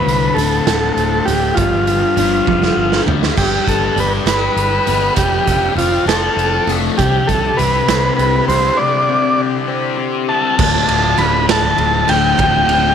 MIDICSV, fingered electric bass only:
0, 0, Header, 1, 2, 480
1, 0, Start_track
1, 0, Tempo, 600601
1, 1254, Time_signature, 6, 3, 24, 8
1, 10347, End_track
2, 0, Start_track
2, 0, Title_t, "Fingered electric bass"
2, 0, Program_c, 0, 33
2, 50, Note_on_c, 0, 36, 82
2, 234, Note_off_c, 0, 36, 0
2, 288, Note_on_c, 0, 26, 76
2, 472, Note_off_c, 0, 26, 0
2, 533, Note_on_c, 0, 26, 88
2, 715, Note_off_c, 0, 26, 0
2, 771, Note_on_c, 0, 26, 83
2, 954, Note_off_c, 0, 26, 0
2, 1019, Note_on_c, 0, 26, 77
2, 1199, Note_off_c, 0, 26, 0
2, 1258, Note_on_c, 0, 31, 88
2, 1619, Note_off_c, 0, 31, 0
2, 1731, Note_on_c, 0, 31, 73
2, 1914, Note_off_c, 0, 31, 0
2, 1978, Note_on_c, 0, 29, 76
2, 2158, Note_off_c, 0, 29, 0
2, 2211, Note_on_c, 0, 31, 77
2, 2394, Note_off_c, 0, 31, 0
2, 2445, Note_on_c, 0, 38, 80
2, 2630, Note_off_c, 0, 38, 0
2, 2696, Note_on_c, 0, 31, 77
2, 2863, Note_off_c, 0, 31, 0
2, 2933, Note_on_c, 0, 31, 78
2, 3101, Note_off_c, 0, 31, 0
2, 3164, Note_on_c, 0, 31, 74
2, 3335, Note_off_c, 0, 31, 0
2, 3403, Note_on_c, 0, 31, 82
2, 3574, Note_off_c, 0, 31, 0
2, 3646, Note_on_c, 0, 31, 85
2, 3816, Note_off_c, 0, 31, 0
2, 3891, Note_on_c, 0, 31, 81
2, 4060, Note_off_c, 0, 31, 0
2, 4129, Note_on_c, 0, 29, 86
2, 4298, Note_off_c, 0, 29, 0
2, 4373, Note_on_c, 0, 29, 81
2, 4541, Note_off_c, 0, 29, 0
2, 4596, Note_on_c, 0, 29, 76
2, 4770, Note_off_c, 0, 29, 0
2, 4840, Note_on_c, 0, 29, 80
2, 5013, Note_off_c, 0, 29, 0
2, 5087, Note_on_c, 0, 29, 87
2, 5258, Note_off_c, 0, 29, 0
2, 5330, Note_on_c, 0, 29, 82
2, 5499, Note_off_c, 0, 29, 0
2, 5580, Note_on_c, 0, 36, 88
2, 5746, Note_off_c, 0, 36, 0
2, 5828, Note_on_c, 0, 36, 84
2, 5991, Note_off_c, 0, 36, 0
2, 6068, Note_on_c, 0, 36, 82
2, 6232, Note_off_c, 0, 36, 0
2, 6297, Note_on_c, 0, 36, 87
2, 6465, Note_off_c, 0, 36, 0
2, 6540, Note_on_c, 0, 36, 81
2, 6707, Note_off_c, 0, 36, 0
2, 6777, Note_on_c, 0, 36, 91
2, 6945, Note_off_c, 0, 36, 0
2, 8461, Note_on_c, 0, 26, 94
2, 8675, Note_off_c, 0, 26, 0
2, 8706, Note_on_c, 0, 26, 84
2, 8917, Note_off_c, 0, 26, 0
2, 8945, Note_on_c, 0, 26, 87
2, 9371, Note_off_c, 0, 26, 0
2, 9419, Note_on_c, 0, 26, 93
2, 9633, Note_off_c, 0, 26, 0
2, 9659, Note_on_c, 0, 26, 89
2, 9873, Note_off_c, 0, 26, 0
2, 9894, Note_on_c, 0, 26, 95
2, 10110, Note_off_c, 0, 26, 0
2, 10134, Note_on_c, 0, 26, 86
2, 10347, Note_off_c, 0, 26, 0
2, 10347, End_track
0, 0, End_of_file